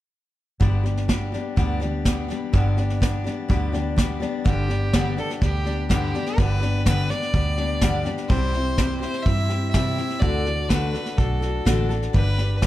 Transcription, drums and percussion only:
0.61 kick, snare
0.86 snare
0.97 snare
1.09 kick, snare, hi-hat pedal
1.34 snare
1.57 kick, snare
1.81 snare
2.05 kick, snare, hi-hat pedal
2.30 snare
2.54 kick, snare
2.78 snare
2.90 snare
3.02 kick, snare, hi-hat pedal
3.26 snare
3.50 kick, snare
3.74 snare
3.98 kick, snare, hi-hat pedal
4.22 snare
4.46 kick, snare
4.70 snare
4.93 kick, snare, hi-hat pedal
5.18 snare
5.30 snare
5.42 kick, snare
5.66 snare
5.90 kick, snare, hi-hat pedal
6.15 snare
6.26 snare
6.38 kick, snare
6.62 snare
6.86 kick, snare, hi-hat pedal
7.10 snare
7.22 snare
7.34 kick, snare
7.58 snare
7.81 kick, snare, hi-hat pedal
8.06 snare
8.18 snare
8.30 kick, snare
8.54 snare
8.78 kick, snare, hi-hat pedal
9.02 snare
9.14 snare
9.26 kick, snare
9.50 snare
9.74 kick, snare, hi-hat pedal
9.98 snare
10.10 snare
10.21 kick, snare
10.46 snare
10.70 kick, snare, hi-hat pedal
10.94 snare
11.06 snare
11.18 kick, snare
11.42 snare
11.66 kick, snare, hi-hat pedal
11.90 snare
12.02 snare
12.14 kick, snare
12.38 snare
12.62 kick, snare, hi-hat pedal

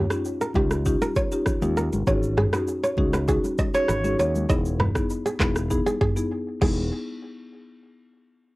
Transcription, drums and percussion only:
0.10 cross-stick, shaker
0.25 shaker
0.41 shaker
0.54 kick, high conga
0.71 cross-stick, shaker
0.86 kick, shaker
1.01 high conga, shaker
1.16 kick, high conga, shaker
1.32 shaker
1.46 kick, cross-stick, low conga, shaker
1.62 high conga, shaker
1.77 shaker
1.93 high conga, shaker
2.07 kick, low conga, shaker
2.23 shaker
2.37 cross-stick, mid tom, high conga
2.53 cross-stick, shaker
2.68 shaker
2.84 shaker
2.97 kick, high conga
3.13 cross-stick, shaker
3.28 kick, shaker
3.44 high conga, shaker
3.58 kick, high conga, shaker
3.74 shaker
3.88 cross-stick, low conga, shaker
4.04 high conga, shaker
4.20 shaker
4.35 high conga, shaker
4.50 kick, low conga, shaker
4.65 shaker
4.80 cross-stick, mid tom, high conga
4.95 kick, cross-stick, shaker
5.10 shaker
5.26 shaker
5.39 kick, clap, high conga, shaker
5.56 cross-stick, shaker
5.71 kick, shaker
5.87 high conga, shaker
6.01 kick, mid tom, high conga
6.17 shaker
6.62 kick, crash, high conga

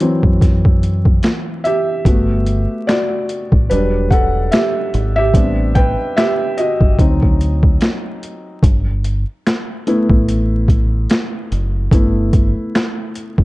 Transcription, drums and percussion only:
0.00 closed hi-hat
0.23 kick
0.41 kick, snare, closed hi-hat
0.65 kick
0.83 closed hi-hat
1.05 kick
1.23 finger snap, snare, closed hi-hat
1.65 closed hi-hat
2.05 kick, closed hi-hat
2.46 closed hi-hat
2.89 finger snap, snare, closed hi-hat
3.29 closed hi-hat
3.52 kick
3.71 closed hi-hat
4.11 kick, closed hi-hat
4.52 finger snap, snare, closed hi-hat
4.94 closed hi-hat
5.34 kick, closed hi-hat
5.75 kick, closed hi-hat
6.17 finger snap, snare, closed hi-hat
6.58 closed hi-hat
6.81 kick
6.99 kick, closed hi-hat
7.22 kick
7.41 closed hi-hat
7.63 kick
7.81 finger snap, snare, closed hi-hat
8.23 closed hi-hat
8.63 kick, closed hi-hat
9.04 closed hi-hat
9.46 finger snap, snare, closed hi-hat
9.87 closed hi-hat
10.10 kick
10.29 closed hi-hat
10.68 kick, closed hi-hat
11.10 finger snap, snare, closed hi-hat
11.52 closed hi-hat
11.91 kick, closed hi-hat
12.33 kick, closed hi-hat
12.75 finger snap, snare, closed hi-hat
13.15 closed hi-hat
13.38 kick

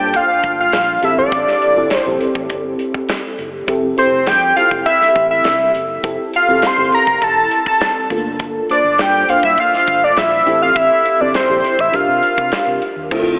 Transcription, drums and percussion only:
0.13 kick, closed hi-hat
0.43 kick, closed hi-hat
0.72 snare, closed hi-hat
1.03 closed hi-hat
1.32 kick, closed hi-hat
1.47 snare
1.62 closed hi-hat
1.90 snare, closed hi-hat
2.21 closed hi-hat
2.35 kick
2.50 kick, closed hi-hat
2.79 closed hi-hat
2.94 kick
3.09 snare, closed hi-hat
3.39 closed hi-hat
3.68 kick, closed hi-hat
3.98 closed hi-hat
4.27 snare, closed hi-hat
4.57 closed hi-hat
4.71 kick
4.86 kick, closed hi-hat
5.01 snare
5.15 kick, closed hi-hat
5.44 snare, closed hi-hat
5.75 closed hi-hat
6.04 kick, closed hi-hat
6.34 closed hi-hat
6.62 snare, closed hi-hat
6.92 closed hi-hat
7.07 kick
7.22 kick, closed hi-hat
7.51 closed hi-hat
7.66 kick
7.81 snare, closed hi-hat
8.10 kick, closed hi-hat
8.39 kick, closed hi-hat
8.69 closed hi-hat
8.99 snare, closed hi-hat
9.29 closed hi-hat
9.43 kick
9.58 kick, closed hi-hat
9.73 snare
9.87 kick, closed hi-hat
10.17 snare, closed hi-hat
10.47 closed hi-hat
10.76 kick, closed hi-hat
11.06 closed hi-hat
11.34 snare, closed hi-hat
11.64 closed hi-hat
11.79 kick
11.94 kick, closed hi-hat
12.23 closed hi-hat
12.38 kick
12.52 snare, closed hi-hat
12.82 closed hi-hat
13.11 kick, crash

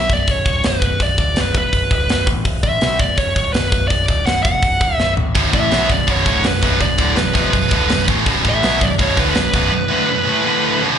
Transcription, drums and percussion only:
0.10 kick, open hi-hat
0.27 kick, open hi-hat
0.46 kick, open hi-hat
0.64 snare, open hi-hat
0.82 kick, open hi-hat
1.00 kick, open hi-hat
1.18 kick, open hi-hat
1.36 snare, open hi-hat
1.55 kick, open hi-hat
1.73 kick, open hi-hat
1.91 kick, open hi-hat
2.09 snare, open hi-hat
2.27 kick, open hi-hat
2.45 kick, open hi-hat
2.63 kick, open hi-hat
2.81 snare, open hi-hat
2.99 kick, open hi-hat
3.18 kick, open hi-hat
3.36 kick, open hi-hat
3.54 snare, open hi-hat
3.72 kick, open hi-hat
3.90 kick, open hi-hat
4.08 kick, open hi-hat
4.27 snare, open hi-hat
4.45 kick, open hi-hat
4.62 kick, open hi-hat
4.81 kick, open hi-hat
5.00 snare
5.17 floor tom
5.35 kick, open hi-hat
5.53 kick, open hi-hat
5.71 snare, open hi-hat
5.90 kick, open hi-hat
6.08 kick, open hi-hat
6.26 kick, open hi-hat
6.44 snare, open hi-hat
6.63 kick, open hi-hat
6.81 kick, open hi-hat
6.98 kick, open hi-hat
7.16 snare, open hi-hat
7.35 kick, open hi-hat
7.53 kick, open hi-hat
7.71 kick, open hi-hat
7.90 snare, open hi-hat
8.08 kick, open hi-hat
8.26 kick, open hi-hat
8.45 kick, open hi-hat
8.63 snare, open hi-hat
8.81 kick, open hi-hat
8.99 kick, open hi-hat
9.17 kick, open hi-hat
9.35 snare, open hi-hat
9.53 kick, open hi-hat

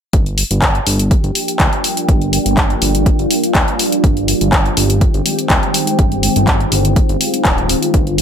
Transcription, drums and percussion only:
0.13 kick, closed hi-hat
0.26 closed hi-hat
0.38 open hi-hat
0.51 closed hi-hat
0.62 kick, clap, closed hi-hat
0.75 closed hi-hat
0.87 open hi-hat
0.99 closed hi-hat
1.11 kick, closed hi-hat
1.24 closed hi-hat
1.35 open hi-hat
1.48 closed hi-hat
1.60 kick, clap, closed hi-hat
1.73 closed hi-hat
1.84 open hi-hat
1.97 closed hi-hat
2.09 kick, closed hi-hat
2.22 closed hi-hat
2.33 open hi-hat
2.46 closed hi-hat
2.57 kick, clap, closed hi-hat
2.70 closed hi-hat
2.82 open hi-hat
2.95 closed hi-hat
3.06 kick, closed hi-hat
3.19 closed hi-hat
3.31 open hi-hat
3.44 closed hi-hat
3.55 kick, clap, closed hi-hat
3.68 closed hi-hat
3.79 open hi-hat
3.92 closed hi-hat
4.04 kick, closed hi-hat
4.17 closed hi-hat
4.28 open hi-hat
4.41 closed hi-hat
4.53 kick, clap, closed hi-hat
4.66 closed hi-hat
4.77 open hi-hat
4.90 closed hi-hat
5.01 kick, closed hi-hat
5.14 closed hi-hat
5.26 open hi-hat
5.39 closed hi-hat
5.50 kick, clap, closed hi-hat
5.63 closed hi-hat
5.74 open hi-hat
5.87 closed hi-hat
5.99 kick, closed hi-hat
6.12 closed hi-hat
6.23 open hi-hat
6.36 closed hi-hat
6.47 kick, clap, closed hi-hat
6.60 closed hi-hat
6.72 open hi-hat
6.85 closed hi-hat
6.96 kick, closed hi-hat
7.09 closed hi-hat
7.21 open hi-hat
7.34 closed hi-hat
7.45 kick, clap, closed hi-hat
7.58 closed hi-hat
7.69 open hi-hat
7.83 closed hi-hat
7.94 kick, closed hi-hat
8.07 closed hi-hat
8.18 open hi-hat

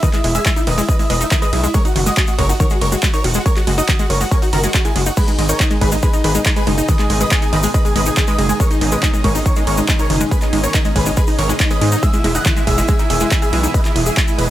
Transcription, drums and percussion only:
0.03 kick, closed hi-hat, shaker
0.13 clap, closed hi-hat, shaker
0.24 open hi-hat, ride
0.35 closed hi-hat, shaker
0.46 kick, clap, closed hi-hat, shaker
0.56 closed hi-hat, shaker
0.67 open hi-hat, ride
0.78 open hi-hat, shaker
0.88 kick, closed hi-hat, shaker
0.99 open hi-hat, shaker
1.10 open hi-hat, ride
1.21 closed hi-hat, shaker
1.31 kick, clap, closed hi-hat, shaker
1.42 closed hi-hat, shaker
1.53 open hi-hat, ride
1.64 closed hi-hat, shaker
1.74 kick, closed hi-hat, shaker
1.85 closed hi-hat, shaker
1.96 open hi-hat, ride
2.06 closed hi-hat, shaker
2.17 kick, clap, closed hi-hat, shaker
2.27 closed hi-hat, shaker
2.39 kick, open hi-hat, ride
2.49 open hi-hat, shaker
2.60 kick, closed hi-hat, shaker
2.70 closed hi-hat, shaker
2.81 open hi-hat, ride
2.92 closed hi-hat, shaker
3.02 kick, clap, closed hi-hat, shaker
3.14 closed hi-hat, shaker
3.24 open hi-hat, ride
3.34 closed hi-hat, shaker
3.46 kick, closed hi-hat, shaker
3.56 clap, closed hi-hat, shaker
3.67 open hi-hat, ride
3.78 closed hi-hat, shaker
3.89 kick, clap, closed hi-hat, shaker
3.99 closed hi-hat, shaker
4.10 open hi-hat, ride
4.21 open hi-hat, shaker
4.31 kick, closed hi-hat, shaker
4.42 open hi-hat, shaker
4.53 open hi-hat, ride
4.63 closed hi-hat, shaker
4.74 kick, clap, closed hi-hat, shaker
4.85 closed hi-hat, shaker
4.96 open hi-hat, ride
5.06 closed hi-hat, shaker
5.17 kick, closed hi-hat, crash, shaker
5.28 closed hi-hat, shaker
5.39 open hi-hat, ride
5.49 closed hi-hat, shaker
5.60 kick, clap, closed hi-hat, shaker
5.71 closed hi-hat, shaker
5.81 kick, open hi-hat, ride
5.92 open hi-hat, shaker
6.03 kick, closed hi-hat, shaker
6.13 closed hi-hat, shaker
6.24 open hi-hat, ride
6.35 closed hi-hat, shaker
6.45 kick, clap, closed hi-hat, shaker
6.56 closed hi-hat, shaker
6.67 open hi-hat, ride
6.78 closed hi-hat, shaker
6.88 kick, closed hi-hat, shaker
6.99 clap, closed hi-hat, shaker
7.10 open hi-hat, ride
7.20 closed hi-hat, shaker
7.31 kick, clap, closed hi-hat, shaker
7.42 closed hi-hat, shaker
7.53 open hi-hat, ride
7.63 open hi-hat, shaker
7.74 kick, closed hi-hat, shaker
7.85 open hi-hat, shaker
7.96 open hi-hat, ride
8.06 closed hi-hat, shaker
8.17 kick, clap, closed hi-hat, shaker
8.27 closed hi-hat, shaker
8.39 open hi-hat, ride
8.49 closed hi-hat, shaker
8.60 kick, closed hi-hat, shaker
8.71 closed hi-hat, shaker
8.81 open hi-hat, ride
8.92 closed hi-hat, shaker
9.03 kick, clap, closed hi-hat, shaker
9.13 closed hi-hat, shaker
9.24 kick, open hi-hat, ride
9.35 open hi-hat, shaker
9.46 kick, closed hi-hat, shaker
9.56 closed hi-hat, shaker
9.67 open hi-hat, ride
9.77 closed hi-hat, shaker
9.89 kick, clap, closed hi-hat, shaker
9.99 closed hi-hat, shaker
10.10 open hi-hat, ride
10.21 closed hi-hat, shaker
10.31 kick, closed hi-hat, shaker
10.41 clap, closed hi-hat, shaker
10.53 open hi-hat, ride
10.64 closed hi-hat, shaker
10.74 kick, clap, closed hi-hat, shaker
10.85 closed hi-hat, shaker
10.96 kick, open hi-hat, ride
11.06 open hi-hat, shaker
11.17 kick, closed hi-hat, shaker
11.27 open hi-hat, shaker
11.39 open hi-hat, ride
11.49 closed hi-hat, shaker
11.59 kick, clap, closed hi-hat, shaker
11.71 closed hi-hat, shaker
11.81 open hi-hat, ride
11.92 closed hi-hat, shaker
12.03 kick, closed hi-hat, shaker
12.13 closed hi-hat, shaker
12.24 open hi-hat, ride
12.35 closed hi-hat, shaker
12.45 kick, clap, closed hi-hat, shaker
12.56 closed hi-hat, shaker
12.67 kick, open hi-hat, ride
12.78 open hi-hat, shaker
12.88 kick, closed hi-hat, shaker
12.99 closed hi-hat, shaker
13.10 open hi-hat, ride
13.20 closed hi-hat, shaker
13.31 kick, clap, closed hi-hat, shaker
13.42 closed hi-hat, shaker
13.53 open hi-hat, ride
13.64 closed hi-hat, shaker
13.74 kick, closed hi-hat, shaker
13.85 clap, closed hi-hat, shaker
13.96 open hi-hat, ride
14.06 closed hi-hat, shaker
14.17 kick, clap, closed hi-hat, shaker
14.28 closed hi-hat, shaker
14.39 open hi-hat, ride

